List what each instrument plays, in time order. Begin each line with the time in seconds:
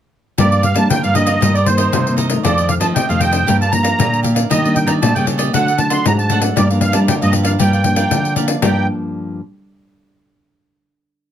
0.38 nylon-string guitar G2 F3 A#3 D4, cavaquinho G4 A#4 D5 F5, accordion D5, pandeiro
0.52 cavaquinho A#4 D5 F5, pandeiro
0.63 accordion F5, muted cavaquinho stroke, pandeiro
0.74 nylon-string guitar F3 G3 A#3 D4, cavaquinho A#4 D5 F5, accordion A5, pandeiro
0.90 nylon-string guitar D3, accordion G5, pandeiro
1.03 nylon-string guitar G2, cavaquinho A#4 D5 F5, accordion F5, pandeiro
1.14 nylon-string guitar F3 A#3 D4, cavaquinho G4 A#4 D5 F5, accordion D#5, pandeiro
1.26 cavaquinho A#4 D5 F5, pandeiro
1.41 nylon-string guitar G2 D#3 A#3 C4, cavaquinho D#4 A#4 C5 D#5, pandeiro
1.54 cavaquinho A#4 C5 D#5, accordion D5, pandeiro
1.66 nylon-string guitar D#3 A#3 C4, accordion C5, muted cavaquinho stroke, pandeiro
1.77 cavaquinho A#4 C5 D#5, pandeiro
1.92 nylon-string guitar G2 C3, pandeiro
2.07 nylon-string guitar D#3 A#3 C4, pandeiro
2.17 cavaquinho D#4 A#4 C5 D#5, pandeiro
2.29 nylon-string guitar D#3 A3 C4, cavaquinho A#4 C5 D#5, pandeiro
2.43 nylon-string guitar F2, cavaquinho F4 A4 C5 D#5, accordion D5, pandeiro
2.57 nylon-string guitar D#3 A3 C4, cavaquinho A4 C5 D#5, pandeiro
2.69 accordion F5, muted cavaquinho stroke, pandeiro
2.80 nylon-string guitar F3, cavaquinho A4 C5 D#5, accordion A5, pandeiro
2.95 nylon-string guitar C3, accordion G5, pandeiro
3.08 nylon-string guitar F2 D#3 A3 C4, cavaquinho A4 C5 D#5, accordion F5, pandeiro
3.20 cavaquinho F4 A4 C5 D#5, accordion G5, pandeiro
3.31 cavaquinho A4 C5 D#5, pandeiro
3.47 nylon-string guitar G2 F3 A#3 D4, cavaquinho G4 A#4 D5 F5, pandeiro
3.61 cavaquinho A#4 D5 F5, accordion A5, pandeiro
3.71 nylon-string guitar F3 A#3 D4, accordion A#5, muted cavaquinho stroke, pandeiro
3.83 cavaquinho A#4 D5 F5, pandeiro
3.99 nylon-string guitar A#2 D3, pandeiro
4.14 pandeiro
4.23 nylon-string guitar F3 A#3 D4, cavaquinho G4 A#4 D5 F5, pandeiro
4.35 cavaquinho A#4 D5 F5, pandeiro
4.50 nylon-string guitar D#3 G3 A#3 D4, cavaquinho D4 G4 D5 D#5, accordion D#5, pandeiro
4.64 nylon-string guitar G3 A#3 D4, cavaquinho G4 D5 D#5, pandeiro
4.75 accordion G5, muted cavaquinho stroke, pandeiro
4.87 nylon-string guitar D#3, cavaquinho G4 D5 D#5, accordion A#5, pandeiro
5.02 nylon-string guitar A#2, accordion A5, pandeiro
5.14 nylon-string guitar C#3 G3 A#3, cavaquinho G4 D5 D#5, accordion G5, pandeiro
5.26 cavaquinho D4 G4 D5 D#5, pandeiro
5.38 cavaquinho G4 D5 D#5, pandeiro
5.53 nylon-string guitar D3 F#3 A3 D4, cavaquinho D4 A4 D5 F#5, accordion F#5, pandeiro
5.66 cavaquinho A4 D5 F#5, pandeiro
5.78 nylon-string guitar F#3 A3 D4, accordion A5, muted cavaquinho stroke, pandeiro
5.90 cavaquinho A4 D5 F#5, accordion C6, pandeiro
6.05 nylon-string guitar G#2, accordion A#5, pandeiro
6.19 accordion A5, pandeiro
6.29 nylon-string guitar F#3 A3 D4, cavaquinho D4 A4 D5 F#5, pandeiro
6.42 cavaquinho A4 D5 F#5, pandeiro
6.56 nylon-string guitar G2 F3 A#3 D4, cavaquinho G4 A#4 D5 F5, accordion D5, pandeiro
6.70 nylon-string guitar F3 A#3 D4, cavaquinho A#4 D5 F5, pandeiro
6.81 accordion F5, muted cavaquinho stroke, pandeiro
6.92 nylon-string guitar G3, cavaquinho A#4 D5 F5, accordion A5, pandeiro
7.08 nylon-string guitar D3, accordion G5, pandeiro
7.21 nylon-string guitar G2 F3 A#3 D4, cavaquinho A#4 D5 F5, accordion D#5, pandeiro
7.31 cavaquinho G4 A#4 D5 F5, pandeiro
7.43 cavaquinho A#4 D5 F5, accordion F5, pandeiro
7.59 nylon-string guitar G2 F3 A#3 D4, cavaquinho G4 A#4 D5 F5, accordion G5, pandeiro
7.73 cavaquinho A#4 D5 F5, pandeiro
7.84 nylon-string guitar F3 A#3 D4, muted cavaquinho stroke, pandeiro
7.96 cavaquinho A#4 D5 F5, pandeiro
8.11 nylon-string guitar D3, pandeiro
8.25 pandeiro
8.36 nylon-string guitar F3 A#3 D4, cavaquinho G4 A#4 D5 F5, pandeiro
8.48 cavaquinho A#4 D5 F5, pandeiro
8.62 nylon-string guitar G2 F3 A#3 D4, cavaquinho G4 A#4 D5 F5, accordion G5, pandeiro